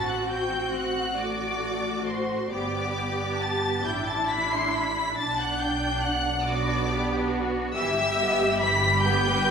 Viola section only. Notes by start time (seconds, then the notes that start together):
Already playing: C4 F#4
1.18 A3 F#4
2.50 B3 G4
3.84 D4 E4
5.18 D4
6.47 B3 D4
7.75 E3 G4
7.97 G3
8.19 B3
8.41 G3
8.62 E3
8.84 G3
9.04 B3
9.26 G3